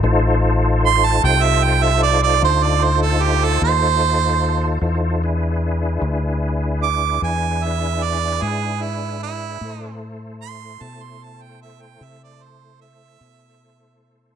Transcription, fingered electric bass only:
X:1
M:12/8
L:1/8
Q:3/8=50
K:Am
V:1 name="Fingered electric bass" clef=bass
A,,,3 C,,3 D,,3 _E,,3 | E,,3 D,,3 E,,3 ^G,,3 | A,,3 B,,3 C,3 B,,3 |]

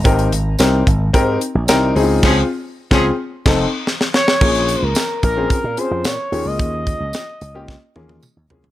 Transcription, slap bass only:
X:1
M:4/4
L:1/16
Q:1/4=110
K:Bbdor
V:1 name="Slap bass" clef=bass
A,,,2 A,,,2 C,,2 A,,,2 A,,2 z B,,, C,,2 D,,2 | D,,2 z3 D,,2 z2 F,,,2 z4 z | B,,,3 D,, z2 B,,,2 z B,, z F,, B,, z E,, D,, | E,,3 D,, z2 D,,3 z E,,2 z E,, C,, D,, |]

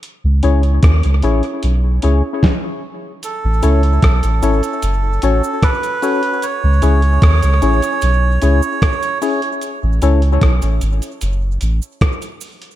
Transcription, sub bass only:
X:1
M:4/4
L:1/16
Q:1/4=75
K:C#m
V:1 name="Sub bass" clef=bass
z C,, C,,2 D,, C,, A,,, z B,,,2 C,, z4 z | z A,,, C,,2 B,,, A,,, G,,, z F,,,2 A,,, z4 z | z C,, C,,2 D,, C,, A,,, z B,,,2 C,, z4 z | z A,,, C,,2 B,,, A,,, G,,, z F,,,2 A,,, z4 z |]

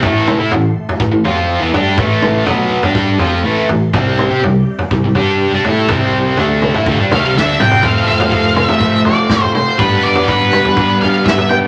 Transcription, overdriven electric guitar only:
X:1
M:4/4
L:1/16
Q:1/4=123
K:Am
V:1 name="Overdriven electric guitar" clef=bass
[A,,E,A,]3 [A,E] [A,,E,]2 z2 [A,,E,] [A,,E,] [F,CF]3 [E,B,] [G,DG]2 | [A,,E,A,]4 [B,,^F,B,]3 [G,DG]3 [=F,CF]2 [A,,E,A,]2 [A,,E,]2 | [C,G,C]3 [CG] [C,G,]2 z2 [C,G,] [C,G,] [G,DG]3 [G,D] [A,EA]2 | [C,G,C]4 [D,A,D]3 [A,E] [D,A,] [G,D] [D,A,] [C,G,] [D,A,D]2 [C,G,C]2 |
[F,A,CFA]16 | [G,B,DB]16 |]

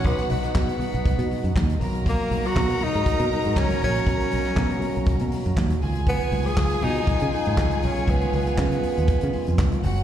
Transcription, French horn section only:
X:1
M:4/4
L:1/8
Q:1/4=120
K:Dbmix
V:1 name="French horn section"
[=B,,A,^D]6- [B,,A,D] [C,_D,_B,G]- | [C,D,B,G]8- | [C,D,B,G]6- [C,D,B,G] [E,CF]- | [E,CF]8- |
[E,CF]6- [E,CF] [G,B,G] |]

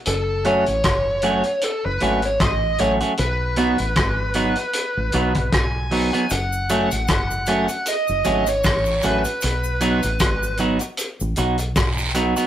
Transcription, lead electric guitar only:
X:1
M:4/4
L:1/16
Q:"Swing 16ths" 1/4=77
K:F#dor
V:1 name="Lead electric guitar"
A2 c6 A B2 c d2 c2 | B12 g4 | f4 f4 d3 c3 B2- | B6 z8 z2 |]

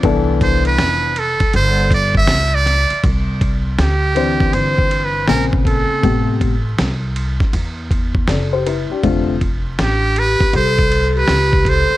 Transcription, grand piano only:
X:1
M:4/4
L:1/16
Q:"Swing 16ths" 1/4=80
K:C
V:1 name="Grand piano"
z16 | z16 | z12 [Ad] [Gc] [EB] [DG]- | [DG] z12 z3 |]
V:2 name="Grand piano"
[E,B,DA]6 z8 z2 | z6 [E,CDc]6 [_D,_B,C_a]4 | [C,A,B,G]2 z12 z2 | [D,A,CF]2 z12 z2 |]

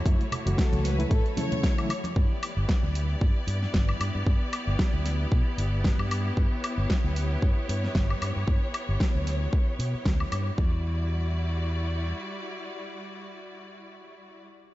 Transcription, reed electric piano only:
X:1
M:4/4
L:1/16
Q:"Swing 16ths" 1/4=114
K:Edor
V:1 name="Reed electric piano" clef=bass
[C,E,F,A,E] z2 [C,E,F,A,F]4 [C,E,F,A,E] z2 [C,E,F,A,E]3 [C,E,F,A,E] z2 | z16 | z16 | z16 |
z16 | z16 | z16 |]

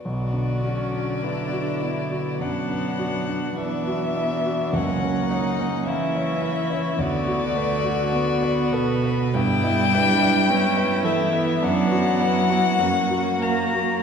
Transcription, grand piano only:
X:1
M:4/4
L:1/16
Q:1/4=52
K:Bm
V:1 name="Grand piano"
B,,, D F D B, F E F F,, D F D B, F E F | C,, C c C ^A, c B c D,, F B F B, B =A B | G,, E B E B, B A B F,, F B F F,, F ^A F |]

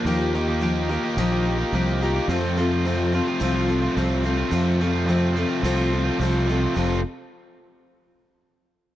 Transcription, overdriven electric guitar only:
X:1
M:4/4
L:1/16
Q:1/4=107
K:Fmix
V:1 name="Overdriven electric guitar"
[E,B,EG]2 [E,B,EG] [B,EG] [E,B,EG]2 [E,B,EG] [B,EG] [E,B,EG] [B,EG]2 [B,EG] [E,B,EG]2 [E,B,EG] [B,EG] | [F,,C,F,A,CF]2 [F,A,CF] [F,A,CF] [F,,C,F,A,CF]2 [F,A,CF] [F,A,CF] [F,A,CF] [F,A,CF]2 [F,A,CF] [F,,C,F,A,CF]2 [F,A,CF] [F,A,CF] | [F,,C,F,A,CF]2 [F,A,CF] [F,A,CF] [F,,C,F,A,CF]2 [F,A,CF] [F,A,CF] [F,A,CF] [F,A,CF]2 [F,A,CF] [F,,C,F,A,CF]2 [F,A,CF] [F,A,CF] | [F,,C,F,A,CF]2 z12 z2 |]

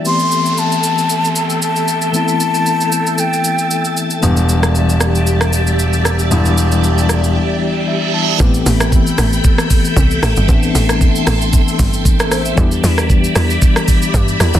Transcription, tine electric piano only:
X:1
M:4/4
L:1/16
Q:"Swing 16ths" 1/4=115
K:Am
V:1 name="Tine electric piano"
z16 | z16 | z16 | z12 e2 a2 |
z16 | z12 z A c e- | e z12 z3 |]
V:2 name="Tine electric piano"
[E,A,B,CG]16 | [E,A,B,CE]16 | [E,G,B,DG]16 | [E,G,B,DE]16 |
[E,A,B,CG]16 | [E,A,B,CD]16 | [E,G,B,DG]16 |]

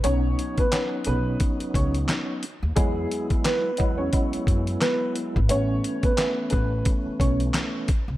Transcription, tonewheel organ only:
X:1
M:4/4
L:1/8
Q:"Swing 16ths" 1/4=88
K:Bmix
V:1 name="Tonewheel organ"
[F,B,CD]2 [F,B,CD]4- [F,B,CD] z | [F,G,B,E]3 [F,G,B,E] [F,G,B,E]4 | [E,A,B,C]2 [E,A,B,C]4- [E,A,B,C] z |]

